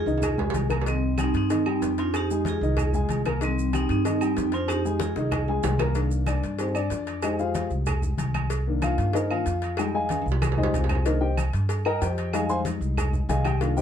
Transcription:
Already playing: F4 G#4
0.06 C2 D#3 D#4 D#5, high timbale, maracas
0.18 high timbale
0.22 cowbell, high conga, low conga, low agogo, claves, maracas
0.38 G#3 G#4 G#5, high conga, low conga, low timbale
0.50 low timbale
0.54 C2, cowbell, high conga, low agogo, maracas
0.69 A#3 A#4 A#5, cowbell, high conga, low agogo, claves, maracas
0.82 low timbale
0.86 D#3 G3 C4 D#4 D#5, cowbell, high conga, low agogo, maracas
1.02 high conga
1.18 G3 C4 D#4 G4 G5, cowbell, high conga, low agogo, claves, maracas
1.34 G2 C4 D#4, cowbell, high conga, maracas
1.50 D#3 D#4 D#5, cowbell, high conga, low agogo, maracas
1.66 G3 G4 G5, high conga, low agogo, claves
1.81 F2, cowbell, high conga, low timbale, maracas
1.98 C4 D4 F4 C5 C6, cowbell, high conga, low agogo, maracas
2.14 D#4 G4, cowbell, high conga, low agogo, claves, maracas
2.30 G#3 G#4 G#5, high conga, maracas
2.45 F4 G#4, cowbell, high conga, low agogo, maracas
2.61 C2 D#3 D#4 D#5, maracas
2.77 cowbell, high conga, low conga, low agogo, claves, maracas
2.93 G#3 G#4 G#5, high conga, low conga, maracas
3.09 C2, cowbell, high conga, low agogo, maracas
3.25 A#3 A#4 A#5, cowbell, high conga, low agogo, claves, maracas
3.41 D#3 G3 C4 D#4 D#5, cowbell, high conga, low agogo, maracas
3.58 high conga, maracas
3.73 G3 C4 D#4 G4 G5, cowbell, high conga, low agogo, claves, maracas
3.89 G2 C4 D#4, cowbell, high conga, maracas
4.05 D#3 D#4 D#5, cowbell, high conga, low agogo, maracas
4.21 G3 G4 G5, high conga, low agogo, claves, maracas
4.37 F2, cowbell, high conga, low timbale, maracas
4.52 C4 D4 F4 C5 C6, cowbell, high conga, low agogo, maracas
4.68 D#4 G4, cowbell, high conga, low agogo, claves, maracas
4.85 G#3 G#4 G#5, high conga, maracas
5.00 F4 G#4, cowbell, high bongo, high conga, low agogo, maracas
5.16 C2 D#3 D#4 D#5, high bongo, maracas
5.32 cowbell, low bongo, high conga, low conga, low agogo, claves, maracas
5.47 G#3 G#4 G#5, high conga, high timbale
5.63 C2, cowbell, low bongo, high conga, low timbale, low agogo, maracas
5.79 A#3 A#4 A#5, cowbell, low bongo, high conga, low timbale, low agogo, claves, maracas
5.95 D#3 A#3 D4, cowbell, high conga, low agogo, maracas
6.11 high conga, maracas
6.26 D4 D5, cowbell, high conga, low agogo, claves, maracas
6.42 G2, cowbell, high conga, maracas
6.59 C4 D#4 G4 C5, cowbell, high conga, low agogo, maracas
6.75 D4 D5, high conga, low agogo, claves, maracas
6.90 F2, cowbell, high conga, low timbale, maracas
7.07 cowbell, high conga, low agogo, maracas
7.22 G#3 D#4 G4 G#4 C5 D#5, cowbell, high conga, low agogo, claves, maracas
7.39 F4 G#4 C5 F5, high conga, maracas
7.55 cowbell, high conga, low agogo, maracas
7.70 C2, maracas
7.86 cowbell, high conga, low conga, low agogo, claves, maracas
8.02 high conga, low conga, maracas
8.18 C2, cowbell, high conga, low agogo, maracas
8.34 cowbell, high conga, low agogo, claves, maracas
8.50 cowbell, high conga, low agogo, maracas
8.66 D#3 A#3 D4, high conga
8.82 F4 F5, cowbell, high conga, low agogo, claves, maracas
8.98 G2, cowbell, high conga, maracas
9.13 D#4 A#4 C5 D#5, cowbell, high conga, low agogo, maracas
9.30 D#3 A#3 D4 F4 F5, high conga, low agogo, claves
9.46 F2, cowbell, high conga, maracas
9.62 cowbell, high conga, low agogo, maracas
9.77 G3 G#3 D#4 G4 G5, cowbell, high conga, low agogo, claves, maracas
9.93 G#4 D#5 F5 G#5, high conga
10.09 cowbell, high conga, high timbale, low agogo, maracas
10.22 high timbale
10.26 C2, maracas
10.32 low timbale
10.42 cowbell, high conga, low timbale, low agogo, claves, maracas
10.52 low timbale
10.57 G3 G#3 D#4 G#4 C5 D#5, low conga
10.63 low timbale
10.73 C2 C4 F4 G#4 C5, cowbell, low conga, low agogo, maracas
10.84 low timbale
10.89 cowbell, low conga, low agogo, claves, maracas
10.95 low timbale
11.05 D#3 A#3 D4 D#4 A#4 C5 D#5, cowbell, high conga, low agogo, maracas
11.21 G4 C5 D#5 G5, high conga
11.37 cowbell, high conga, low agogo, claves, maracas
11.53 G2, cowbell, high conga, maracas
11.69 cowbell, high conga, low agogo, maracas
11.85 A#4 D#5 G5 A#5, high conga, low agogo, claves
12.01 F2 G4 C5 D#5 G5, cowbell, high conga, low timbale, maracas
12.17 cowbell, high conga, low agogo, maracas
12.33 G3 G#3 D#4 G#4 D#5 F5 G#5, cowbell, high conga, low agogo, claves, maracas
12.49 C5 F5 G#5 C6, high conga, maracas
12.65 cowbell, high conga, low agogo, maracas
12.81 C2, maracas
12.97 cowbell, high conga, low conga, low agogo, claves, maracas
13.13 high conga, low conga, maracas
13.29 C2 G#4 D#5 F5 G#5, cowbell, high conga, low timbale, low agogo, maracas
13.45 G4 G5, cowbell, high conga, low agogo, claves, maracas
13.60 D#3 A#3 D4 F4 F5, cowbell, high conga, low agogo, maracas
13.77 G4 C5 D#5 G5, high conga, maracas

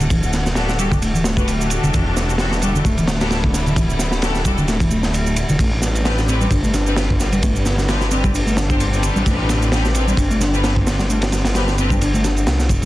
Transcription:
Already playing: D1 D3 G3 A3 F#5
0.00 D3, ride, shaker
0.10 E3, kick, ride, shaker
0.23 shaker
0.33 snare, ride, shaker
0.46 snare, shaker
0.55 D4 F#4 G4 A4, snare, ride, shaker
0.69 snare, shaker
0.79 G3 D4 F#4 G4 A4, ride, shaker
0.91 D3, kick, shaker
1.02 A3, ride, shaker
1.14 E3, shaker
1.24 A3, snare, ride, shaker
1.37 D4 F#4 G4 B4, kick, shaker
1.48 ride, shaker
1.61 D4 F#4 G4 A4, shaker
1.70 ride, shaker
1.83 E1 D3, shaker
1.93 E1 E3 E4, kick, ride, shaker
2.17 snare, ride, shaker
2.29 ride, shaker
2.38 D4 F#4 G4 A4, snare, ride, shaker
2.51 snare, shaker
2.62 G3 D4 F#4 G4 A4, ride, shaker
2.75 D3, shaker
2.85 D1 A3, kick, ride, shaker
2.98 E3, ride, shaker
3.07 A3, snare, ride, shaker
3.21 D4 F#4 G4 A4, snare, ride, shaker
3.30 snare, ride, shaker
3.44 kick
3.54 snare, ride, shaker
3.66 D3, ride, shaker
3.76 E3, kick, ride, shaker
3.90 shaker
3.99 snare, ride, shaker
4.11 snare, shaker
4.22 D4 F#4 G4 A4, snare, ride, shaker
4.35 snare, shaker
4.45 G3 D4 F#4 G4 A4, kick, ride, shaker
4.58 D3, shaker
4.68 A3, snare, ride, shaker
4.80 E3, kick, ride, shaker
4.91 A3, shaker
5.03 snare, ride, shaker
5.14 ride, shaker
5.27 shaker
5.36 ride, shaker
5.49 E1 D3, shaker
5.59 A1 C3 A3 D4 B4, kick, ride, shaker
5.82 snare, ride, shaker
5.95 ride, shaker
6.05 C4 D4 G4 B4, snare, ride, shaker
6.18 snare, shaker
6.28 C4 D4 G4 B4, ride, shaker
6.41 G3, shaker
6.51 G1 D4, kick, ride, shaker
6.63 A3, ride, shaker
6.74 D4, snare, ride, shaker
6.87 C4 D4 G4 B4, shaker
6.96 snare, ride, shaker
7.10 kick
7.20 snare, ride, shaker
7.32 G3, ride, shaker
7.43 A3, kick, ride, shaker
7.56 shaker
7.66 snare, ride, shaker
7.78 snare, shaker
7.88 C4 D4 G4 B4, snare, ride, shaker
8.01 snare, shaker
8.11 C4 D4 G4 B4, ride, shaker
8.24 G3, kick, shaker
8.34 D4, ride, shaker
8.47 A3, shaker
8.57 D4, snare, ride, shaker
8.70 C4 D4 G4 C5, kick, shaker
8.80 ride, shaker
8.93 C4 D4 G4 B4, shaker
9.03 ride, shaker
9.16 A1 G3, shaker
9.26 A1 A3 C4, kick, ride, shaker
9.49 snare, ride, shaker
9.62 ride, shaker
9.72 C4 D4 G4 B4, snare, ride, shaker
9.85 snare, shaker
9.94 C4 D4 G4 B4, ride, shaker
10.07 G3, shaker
10.17 G1 D4, kick, ride, shaker
10.31 A3, ride, shaker
10.41 D4, snare, ride, shaker
10.54 C4 D4 G4 B4, shaker
10.64 snare, ride, shaker
10.76 kick
10.87 snare, ride, shaker
10.99 G3, snare, shaker
11.10 A3, ride, shaker
11.22 snare, ride, shaker
11.32 snare, ride, shaker
11.45 snare, ride, shaker
11.55 C4 D4 G4 B4, snare, ride, shaker
11.68 snare, shaker
11.78 C4 D4 G4 B4, ride, shaker
11.90 G3, kick, shaker
12.01 D4, ride, swell, shaker
12.14 A3, shaker
12.24 D4, snare, ride, shaker
12.36 ride, shaker
12.47 C2, snare, ride, shaker
12.59 snare, shaker
12.69 E1, kick, ride, shaker
12.82 ride

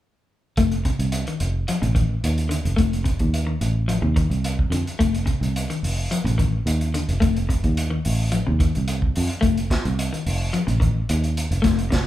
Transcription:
0.57 F1 A3, kick, closed hi-hat
0.72 closed hi-hat
0.85 C3, kick, closed hi-hat
0.99 C2, closed hi-hat
1.12 closed hi-hat
1.27 D#3, closed hi-hat
1.40 F1, closed hi-hat
1.68 F3, closed hi-hat
1.82 A1 C3, closed hi-hat
1.95 D#3, kick, closed hi-hat
2.24 D#2, closed hi-hat
2.38 closed hi-hat
2.49 D3, closed hi-hat
2.65 F1, closed hi-hat
2.76 F1 A3, kick, closed hi-hat
2.93 closed hi-hat
3.04 C3, kick, closed hi-hat
3.19 D#2, kick, closed hi-hat
3.34 closed hi-hat
3.47 D#3
3.61 A1, closed hi-hat
3.88 F3, closed hi-hat
4.02 D#2 C3
4.16 D#3, kick, closed hi-hat
4.30 C2, closed hi-hat
4.44 closed hi-hat
4.59 kick
4.70 F2 D3, closed hi-hat
4.87 closed hi-hat
4.99 F1 A3, kick, closed hi-hat
5.15 closed hi-hat
5.26 C3, kick, closed hi-hat
5.41 C2, closed hi-hat
5.56 closed hi-hat
5.70 D#3, closed hi-hat
5.83 F1, open hi-hat
6.11 F3, closed hi-hat
6.24 A1 C3, closed hi-hat
6.38 D#3, kick, closed hi-hat
6.66 D#2, closed hi-hat
6.81 closed hi-hat
6.94 D3, closed hi-hat
7.09 F1, closed hi-hat
7.20 F1 A3, kick, closed hi-hat
7.37 closed hi-hat
7.49 C3, kick, closed hi-hat
7.64 D#2, kick, closed hi-hat
7.77 closed hi-hat
7.90 D#3
8.05 A1, open hi-hat
8.32 F3, closed hi-hat
8.47 D#2 C3
8.60 D#3, kick, closed hi-hat
8.75 C2, closed hi-hat
8.88 closed hi-hat
9.02 kick
9.16 F2, open hi-hat
9.30 closed hi-hat
9.41 F1 A3, kick, closed hi-hat
9.57 closed hi-hat
9.70 kick, snare, closed hi-hat
9.85 C2, closed hi-hat
9.99 closed hi-hat
10.13 D#3, closed hi-hat
10.26 F1, open hi-hat
10.53 F3, closed hi-hat
10.67 A1 C3, closed hi-hat
10.80 D#3, kick, closed hi-hat
11.09 D#2, closed hi-hat
11.24 closed hi-hat
11.37 closed hi-hat
11.51 F1, closed hi-hat
11.62 F1 A3, kick, snare, closed hi-hat
11.79 closed hi-hat
11.90 C3, kick, snare, closed hi-hat

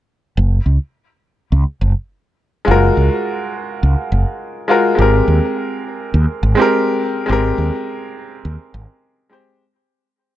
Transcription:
0.37 F#1
0.66 C#2
1.52 C#2
1.81 F#1
2.65 F#1 G#3 F4
2.69 F#4 A#4
2.97 C#2
3.83 C#2
4.12 F#1
4.68 G#3 F4 F#4 A#4
4.95 G#1 G#3 C4
4.99 G4 A#4
5.28 D#2
6.14 D#2
6.43 G#1
6.55 G#3 C4
6.59 G4 A#4
7.26 G#1 G#3 C4
7.30 G4 A#4
7.58 D#2
8.45 D#2
8.74 G#1
9.30 G#3 C4 G4 C5

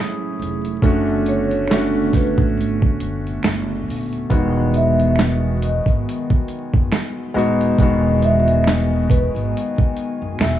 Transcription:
Already playing: F#3 A3 C#4 E4 G#4
0.39 F1, closed hi-hat
0.65 closed hi-hat
0.82 F#1 D3 A3 B3 C#4 D4 F#4, kick, closed hi-hat
1.26 C#5, closed hi-hat
1.51 closed hi-hat
1.67 A3 C#4, finger snap, snare
1.72 D4 F#4, closed hi-hat
2.13 B4, kick, snare, closed hi-hat
2.38 A1, kick
2.57 G#1, closed hi-hat
2.82 kick
3.00 F#1, closed hi-hat
3.27 closed hi-hat
3.43 F#1, finger snap, snare, closed hi-hat
3.88 D#1, open hi-hat
4.13 closed hi-hat
4.30 E1 D#3 G#3 B3 F#4 G#5, kick, closed hi-hat
4.74 E5, closed hi-hat
5.00 closed hi-hat
5.16 finger snap, snare
5.21 closed hi-hat
5.62 D#5, closed hi-hat
5.86 G#1, kick, closed hi-hat
6.09 closed hi-hat
6.30 kick
6.48 closed hi-hat
6.74 F#1, kick
6.92 finger snap, snare, closed hi-hat
7.34 D#1 G#3 B3 D#4 F#4
7.39 closed hi-hat
7.61 closed hi-hat
7.79 E1 D#3 G#3 B3 F#4, kick, closed hi-hat
8.22 E5, closed hi-hat
8.48 closed hi-hat
8.64 finger snap, snare
8.69 closed hi-hat
9.10 B4, kick, closed hi-hat
9.35 G#1, closed hi-hat
9.57 closed hi-hat
9.78 kick
9.97 closed hi-hat
10.22 F#1
10.39 E1 E5, finger snap, snare, closed hi-hat

